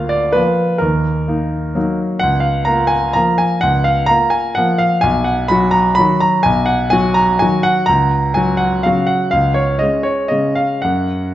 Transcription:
Already playing: D2 A#3 F4 F5
0.09 D5
0.32 F3 A#3 F4 B4
0.78 D#2 A#4
1.28 A#3 D#4
1.75 F#3 A#3 D#4
2.19 C#2 F#5
2.40 F5
2.65 A#3 F4 A#5
2.87 G#5
3.13 F3 A#3 F4 A#5
3.38 G#5
3.61 C#2 F#5
3.84 F5
4.06 A#3 F4 A#5
4.30 G#5
4.55 F3 A#3 F4 F#5
4.78 F5
5.01 B1 G#5
5.24 F#5
5.48 F#3 F#4 B5
5.71 A#5
5.95 D#3 F#3 B5
5.99 F#4
6.20 A#5
6.43 B1 G#5
6.66 F#5
6.90 F#3 F#4 G#5
7.14 A#5
7.39 D#3 F#3 F#4 G#5
7.63 F#5
7.86 C#2 A#5
8.34 F#3 F#4 G#5
8.57 F#5
8.83 C#3 F#3 F#4 F5
9.07 F#5
9.31 C#2 F5
9.54 C#5
9.79 G#3 C#4 D#5
10.03 C#5
10.28 C#3 G#3 C#4 D#5
10.55 F5
10.82 F#2 F#5

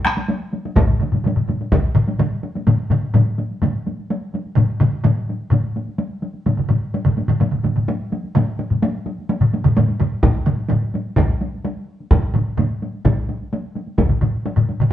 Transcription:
0.05 taiko rim, taiko high
0.17 taiko high
0.29 taiko high
0.53 taiko high
0.65 taiko high
0.76 taiko, taiko low-mid, taiko mid, taiko high
0.87 taiko low-mid, taiko mid
1.00 taiko low-mid, taiko mid, taiko high
1.12 taiko low-mid, taiko mid, taiko high
1.24 taiko low-mid, taiko mid, taiko high
1.36 taiko low-mid, taiko mid
1.48 taiko low-mid, taiko mid, taiko high
1.61 taiko high
1.72 taiko, taiko low-mid, taiko mid, taiko high
1.95 taiko low-mid, taiko mid
2.08 taiko high
2.19 taiko low-mid, taiko mid, taiko high
2.43 taiko high
2.55 taiko high
2.67 taiko low-mid, taiko mid, taiko high
2.79 taiko high
2.90 taiko low-mid, taiko mid, taiko high
3.03 taiko high
3.14 taiko low-mid, taiko mid, taiko high
3.27 taiko high
3.38 taiko high
3.51 taiko high
3.62 taiko low-mid, taiko mid, taiko high
3.75 taiko high
3.87 taiko high
4.00 taiko high
4.11 taiko high
4.34 taiko high
4.46 taiko high
4.56 taiko low-mid, taiko mid, taiko high
4.69 taiko high
4.80 taiko low-mid, taiko mid, taiko high
4.93 taiko high
5.04 taiko low-mid, taiko mid, taiko high
5.17 taiko high
5.29 taiko high
5.41 taiko high
5.50 taiko low-mid, taiko mid, taiko high
5.64 taiko high
5.76 taiko high
5.88 taiko high
5.98 taiko high
6.22 taiko high
6.35 taiko high
6.46 taiko low-mid, taiko mid, taiko high
6.57 taiko low-mid, taiko mid, taiko high
6.69 taiko low-mid, taiko mid, taiko high
6.94 taiko high
7.05 taiko low-mid, taiko mid, taiko high
7.17 taiko high
7.28 taiko low-mid, taiko mid
7.40 taiko low-mid, taiko mid, taiko high
7.52 taiko low-mid, taiko mid, taiko high
7.64 taiko low-mid, taiko mid, taiko high
7.76 taiko low-mid, taiko mid, taiko high
7.88 taiko high
8.12 taiko high
8.24 taiko high
8.35 taiko low-mid, taiko mid, taiko high
8.48 taiko high
8.59 taiko high
8.70 taiko low-mid, taiko mid, taiko high
8.82 taiko high
8.94 taiko high
9.06 taiko high
9.19 taiko high
9.29 taiko high
9.41 taiko low-mid, taiko mid, taiko high
9.53 taiko high
9.64 taiko low-mid, taiko mid, taiko high
9.77 taiko low-mid, taiko mid, taiko high
9.89 taiko high
10.00 taiko low-mid, taiko mid, taiko high
10.23 taiko, taiko low-mid, taiko mid, taiko high
10.35 taiko high
10.46 taiko low-mid, taiko mid, taiko high
10.58 taiko high
10.69 taiko low-mid, taiko mid, taiko high
10.82 taiko high
10.94 taiko high
11.06 taiko high
11.17 taiko, taiko low-mid, taiko mid, taiko high
11.29 taiko high
11.41 taiko high
11.54 taiko high
11.65 taiko high
12.00 taiko high
12.11 taiko, taiko low-mid, taiko mid, taiko high
12.24 taiko high
12.34 taiko low-mid, taiko mid, taiko high
12.48 taiko high
12.57 taiko low-mid, taiko mid, taiko high
12.71 taiko high
12.83 taiko high
12.95 taiko high
13.05 taiko, taiko low-mid, taiko mid, taiko high
13.18 taiko high
13.29 taiko high
13.41 taiko high
13.53 taiko high
13.75 taiko high
13.87 taiko high
13.98 taiko, taiko low-mid, taiko mid, taiko high
14.09 taiko low-mid, taiko mid
14.21 taiko low-mid, taiko mid, taiko high
14.34 taiko high
14.46 taiko high
14.56 taiko low-mid, taiko mid, taiko high
14.69 taiko high
14.80 taiko low-mid, taiko mid, taiko high

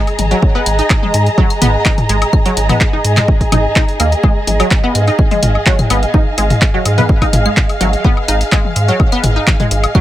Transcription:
Already playing: G#4 D#5 A#5
0.07 closed hi-hat, high woodblock
0.19 G#1, closed hi-hat, high tom
0.31 F#3, closed hi-hat
0.42 kick
0.55 B3, high woodblock
0.66 G#1, closed hi-hat, claves
0.79 D#4, closed hi-hat
0.90 kick, clap, high woodblock
1.03 G#3, high tom
1.14 G#2, closed hi-hat
1.26 closed hi-hat
1.38 F#3, kick, high woodblock
1.50 closed hi-hat, claves
1.61 G#1 B3, closed hi-hat, mid tom
1.85 D#4, kick, clap, high tom, high woodblock
1.98 closed hi-hat, mid tom
2.09 G#1 G#3, closed hi-hat
2.22 closed hi-hat, high woodblock
2.33 kick, claves
2.46 F#3, closed hi-hat
2.57 G#1, closed hi-hat
2.69 B3, closed hi-hat, mid tom, high tom, high woodblock
2.81 kick, clap
2.93 D#4
3.04 G#2, closed hi-hat
3.17 G#3, clap, closed hi-hat, mid tom, claves, high woodblock
3.28 kick
3.41 kick, closed hi-hat
3.52 G#1 D#4, closed hi-hat, mid tom, high tom, high woodblock
3.76 D#4, kick, clap
3.88 closed hi-hat
4.00 D#2 A#3, closed hi-hat, claves, high woodblock
4.12 closed hi-hat
4.24 G#3, kick, high woodblock
4.47 G#1, closed hi-hat, high tom
4.60 F#3, closed hi-hat, high woodblock
4.71 kick, clap
4.84 B3 F5
4.95 G#2, closed hi-hat, claves
5.07 D#4, closed hi-hat, high woodblock
5.19 kick
5.31 G#3, closed hi-hat, high tom
5.43 G#1, closed hi-hat, mid tom
5.55 high woodblock
5.66 F#3, kick, clap
5.79 closed hi-hat, mid tom, claves
5.90 G#1 B3, closed hi-hat, high woodblock
6.03 closed hi-hat
6.14 D#4, kick, high tom
6.38 G#1 G#3, closed hi-hat, high woodblock
6.50 closed hi-hat, mid tom
6.62 kick, clap, claves
6.74 F#3
6.85 G#2, closed hi-hat, high woodblock
6.98 B3, closed hi-hat, mid tom, high tom
7.09 kick
7.22 D#4, kick, closed hi-hat, high woodblock
7.33 G#1, closed hi-hat, mid tom
7.45 G#3, claves
7.57 kick, clap
7.69 closed hi-hat, high woodblock
7.81 G#1 F#3, closed hi-hat, high tom
7.93 closed hi-hat
8.04 B3, kick
8.17 high woodblock
8.28 G#1 D#4, closed hi-hat, claves
8.41 closed hi-hat
8.52 G#3, kick, clap, high woodblock
8.65 high tom
8.76 G#2, closed hi-hat
8.88 F#3, closed hi-hat
9.00 kick, high woodblock
9.12 B3, closed hi-hat, claves
9.23 G#1, closed hi-hat, mid tom
9.36 D#4
9.47 kick, clap, high tom, high woodblock
9.60 G#3, closed hi-hat, mid tom
9.71 G#1, closed hi-hat
9.84 closed hi-hat, high woodblock
9.95 F#3, kick, claves

